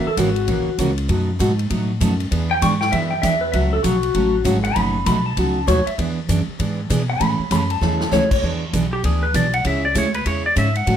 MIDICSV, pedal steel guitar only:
0, 0, Header, 1, 2, 480
1, 0, Start_track
1, 0, Tempo, 305655
1, 1712, Time_signature, 4, 2, 24, 8
1, 17224, End_track
2, 0, Start_track
2, 0, Title_t, "Pedal steel guitar"
2, 0, Program_c, 0, 26
2, 111, Note_on_c, 0, 69, 80
2, 277, Note_off_c, 0, 69, 0
2, 277, Note_on_c, 0, 66, 78
2, 1206, Note_off_c, 0, 66, 0
2, 3942, Note_on_c, 0, 79, 90
2, 4112, Note_off_c, 0, 79, 0
2, 4121, Note_on_c, 0, 85, 81
2, 4407, Note_off_c, 0, 85, 0
2, 4409, Note_on_c, 0, 79, 83
2, 4586, Note_off_c, 0, 79, 0
2, 4589, Note_on_c, 0, 76, 92
2, 4877, Note_on_c, 0, 79, 78
2, 4881, Note_off_c, 0, 76, 0
2, 5055, Note_on_c, 0, 76, 90
2, 5059, Note_off_c, 0, 79, 0
2, 5354, Note_off_c, 0, 76, 0
2, 5355, Note_on_c, 0, 71, 81
2, 5530, Note_on_c, 0, 76, 72
2, 5538, Note_off_c, 0, 71, 0
2, 5831, Note_off_c, 0, 76, 0
2, 5856, Note_on_c, 0, 69, 86
2, 6011, Note_on_c, 0, 66, 91
2, 6029, Note_off_c, 0, 69, 0
2, 6952, Note_off_c, 0, 66, 0
2, 7283, Note_on_c, 0, 78, 99
2, 7460, Note_off_c, 0, 78, 0
2, 7460, Note_on_c, 0, 83, 83
2, 7931, Note_off_c, 0, 83, 0
2, 7958, Note_on_c, 0, 83, 87
2, 8246, Note_off_c, 0, 83, 0
2, 8260, Note_on_c, 0, 81, 80
2, 8896, Note_off_c, 0, 81, 0
2, 8918, Note_on_c, 0, 73, 94
2, 9206, Note_off_c, 0, 73, 0
2, 9213, Note_on_c, 0, 76, 92
2, 9387, Note_off_c, 0, 76, 0
2, 11143, Note_on_c, 0, 78, 100
2, 11332, Note_off_c, 0, 78, 0
2, 11332, Note_on_c, 0, 83, 96
2, 11787, Note_off_c, 0, 83, 0
2, 11814, Note_on_c, 0, 83, 79
2, 12093, Note_off_c, 0, 83, 0
2, 12106, Note_on_c, 0, 81, 86
2, 12739, Note_off_c, 0, 81, 0
2, 12764, Note_on_c, 0, 73, 84
2, 13039, Note_off_c, 0, 73, 0
2, 13058, Note_on_c, 0, 73, 96
2, 13229, Note_off_c, 0, 73, 0
2, 17224, End_track
0, 0, End_of_file